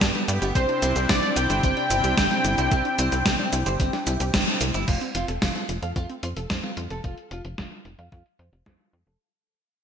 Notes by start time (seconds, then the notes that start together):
Already playing: A3 B3 G4
0.01 G2 A3 D4, kick, snare, closed hi-hat, shaker
0.15 G3 B3, closed hi-hat
0.28 G2 D4, closed hi-hat, shaker
0.42 G1 B3 G4, closed hi-hat, shaker
0.55 C2 C3 C4 D4 E4 C5, kick, closed hi-hat, shaker
0.69 D4, closed hi-hat
0.82 C2 C4 E4, closed hi-hat, shaker
0.96 C2 G4, closed hi-hat, shaker
1.09 C2 C4 D5, kick, snare, closed hi-hat, shaker
1.23 C4 D4, closed hi-hat
1.36 C2 E4 G5, closed hi-hat, shaker
1.50 G1 G4 C5, closed hi-hat, shaker
1.63 G1 C4, kick, closed hi-hat, shaker
1.77 D4, closed hi-hat
1.90 G1 E4 G4, closed hi-hat, shaker
2.04 C2 G4, closed hi-hat, shaker
2.17 G1 C4 G4, kick, snare, closed hi-hat, shaker
2.31 C4 D4, snare, closed hi-hat
2.45 G1 E4, closed hi-hat, shaker
2.58 C2 E4 G4, closed hi-hat, shaker
2.72 C2 C4, kick, closed hi-hat, shaker
2.85 D4, closed hi-hat
2.99 C2 C4 E4, closed hi-hat, shaker
3.12 C2 G4, closed hi-hat, shaker
3.26 C2 C4, kick, snare, closed hi-hat, shaker
3.39 C4 D4, closed hi-hat
3.53 C2 E4, closed hi-hat, shaker
3.66 G1 G4 C5, closed hi-hat, shaker
3.80 G1 C4, kick, closed hi-hat, shaker
3.93 D4, snare, closed hi-hat
4.07 C2 E4 G4, closed hi-hat, shaker
4.20 C2 G4, closed hi-hat, shaker
4.34 G1 C4 G4, kick, snare, closed hi-hat, shaker
4.47 C4 D4, closed hi-hat
4.61 C2 E4, closed hi-hat, shaker
4.74 G1 E4 G4, closed hi-hat, shaker
4.88 F1 A3 F4, kick, closed hi-hat, crash
5.01 C4, closed hi-hat
5.15 F1 F4, closed hi-hat
5.28 F1 A4, closed hi-hat
5.42 F1 A3 F4, kick, snare, closed hi-hat
5.55 C4 F4, closed hi-hat
5.69 F1 F4, closed hi-hat
5.82 F2 A4 F5, closed hi-hat
5.96 F2 A3 F4, kick, closed hi-hat
6.10 C4, closed hi-hat
6.23 F2 F4 C5, closed hi-hat
6.37 F1 A4, closed hi-hat
6.50 F2 A3 C5, kick, snare, closed hi-hat
6.63 C4 F4, snare, closed hi-hat
6.77 F2 F4, closed hi-hat
6.90 F1 A4, closed hi-hat
7.04 F1 F4, kick, closed hi-hat
7.18 closed hi-hat
7.31 F1 F4, closed hi-hat
7.45 F1, closed hi-hat
7.58 F1 F4, kick, snare, closed hi-hat
7.72 F4, closed hi-hat
7.85 F1, closed hi-hat
7.99 F2 F5, closed hi-hat
8.12 F2 F4, kick, closed hi-hat
8.26 closed hi-hat
8.39 F2 C5, closed hi-hat
8.53 F1, closed hi-hat
8.66 F2 C5, kick, snare, closed hi-hat
8.80 F4, closed hi-hat
8.93 F2, closed hi-hat
9.07 F1 A4, closed hi-hat